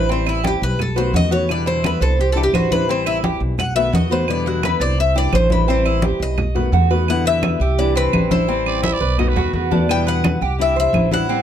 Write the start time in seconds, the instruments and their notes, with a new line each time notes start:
Already playing: upright bass A1
0.09 nylon-string guitar E3 G3 C4 E4, cuban tres C4 C5, high conga
0.26 cuban tres E4, high conga, claves
0.44 nylon-string guitar E3 G3 C4 E4, cuban tres G4, high conga
0.62 upright bass B1, cuban tres B4, high conga
0.79 cuban tres A4, muted nylon-string guitar stroke, high conga, low conga, claves
0.96 nylon-string guitar D#3 A3 B3 F#4, cuban tres B4 C5, high conga
1.13 upright bass E2, nylon-string guitar D#3 A3 B3 F#4, cuban tres F#4 D#5, high conga
1.31 nylon-string guitar D#3 A3 B3 F#4, cuban tres B4 C#5
1.48 nylon-string guitar B2 D3 G3 B3 E4, cuban tres D5, high conga, claves
1.66 cuban tres E4 C5, high conga
1.83 nylon-string guitar D3 G3 B3 E4, cuban tres B4, high conga, claves
2.01 upright bass C2, cuban tres A4 C5, high conga
2.18 cuban tres G4, muted nylon-string guitar stroke, high conga
2.32 nylon-string guitar D4 E4, cuban tres A4
2.37 nylon-string guitar E3 G3, cuban tres G4, high conga
2.43 cuban tres G4
2.53 upright bass A1, nylon-string guitar E3 G3 D4 E4, cuban tres F#4 C5, high conga, claves
2.71 nylon-string guitar E3 G3 D4 E4, cuban tres B4, high conga
2.88 nylon-string guitar E3 G3 C4 E4, cuban tres C4 C5, high conga
3.06 cuban tres E4, high conga, claves
3.23 nylon-string guitar E3 G3 C4 E4, cuban tres G4, high conga
3.40 upright bass B1, high conga
3.58 cuban tres F#5, muted nylon-string guitar stroke, high conga, low conga, claves
3.75 nylon-string guitar D#3 A3 B3 F#4, cuban tres B4 E5, high conga
3.92 upright bass E2, nylon-string guitar D#3 A3 B3 F#4, cuban tres F#4 D#5, high conga
4.10 nylon-string guitar D#3 A3 B3 F#4, cuban tres B4 C5
4.28 nylon-string guitar B2 D3 G3 B3 E4, cuban tres D5, high conga, claves
4.46 cuban tres E4 F#4, high conga
4.63 nylon-string guitar D3 G3 B3 E4, cuban tres B4, high conga, claves
4.80 upright bass C2, cuban tres C5 D5, high conga
4.98 cuban tres E5, muted nylon-string guitar stroke, high conga
5.15 nylon-string guitar E3 G3 D4 E4, cuban tres G4 D5, high conga
5.33 upright bass A1, nylon-string guitar E3 G3 D4 E4, cuban tres C5, high conga, claves
5.50 nylon-string guitar E3 G3 D4 E4, cuban tres B4, high conga
5.67 nylon-string guitar E3 G3 C4 E4, cuban tres C4 C5, high conga
5.85 cuban tres E4, high conga, claves
6.02 nylon-string guitar E3 G3 C4 E4, cuban tres G4, high conga
6.20 upright bass B1, cuban tres D#5, high conga
6.38 muted nylon-string guitar stroke, high conga, low conga, claves
6.55 nylon-string guitar D#3 A3 B3 F#4, cuban tres B4, high conga, low conga
6.72 upright bass E2, nylon-string guitar A3 B3 F#4, cuban tres F#4, high conga
6.91 nylon-string guitar D#3 A3 B3 F#4, cuban tres B4
7.08 nylon-string guitar B2 D3 G3 B3 E4, cuban tres F#5, high conga, claves
7.26 cuban tres B4 E5, high conga
7.43 high conga, claves
7.60 upright bass C2, cuban tres G4, muted nylon-string guitar stroke, high conga
7.78 nylon-string guitar C3 E3 G3 D4 E4, cuban tres D5, high conga
7.96 cuban tres C4 B4, high conga
8.13 upright bass A1, nylon-string guitar E3 G3 D4 E4, high conga, claves
8.31 nylon-string guitar E3 G3 D4 E4, cuban tres E4 C5, high conga
8.48 nylon-string guitar E3 G3 C4 E4, cuban tres C4, high conga
8.66 trumpet D5, high conga, claves
8.83 cuban tres E4, trumpet E5, high conga
8.93 trumpet D5
9.01 upright bass B1, cuban tres B4, muted nylon-string guitar stroke, high conga
9.18 nylon-string guitar B2 D#3 A3 B3 F#4, trumpet D#5, high conga, low conga, claves
9.28 trumpet B4
9.36 upright bass D#2, cuban tres F#4, high conga, low conga
9.53 upright bass E2, nylon-string guitar D#3 A3 B3 F#4, trumpet B4, high conga
9.71 nylon-string guitar D#3 A3 B3 F#4, cuban tres D4, high conga
9.88 nylon-string guitar B2 D3 G3 B3 E4, cuban tres G5, high conga, claves
10.07 cuban tres B4 F#5, high conga
10.24 high conga, claves
10.41 upright bass C2, cuban tres G4, muted nylon-string guitar stroke, high conga
10.58 nylon-string guitar C3 E3 G3 D4 E4, cuban tres E5, high conga
10.76 cuban tres C5 E5, high conga
10.93 upright bass A1, nylon-string guitar E3 G3 D4 E4, high conga, claves
11.11 nylon-string guitar E3 G3 D4 E4, cuban tres E4 F#5, high conga
11.28 nylon-string guitar E3 G3 C4 E4, cuban tres C4, high conga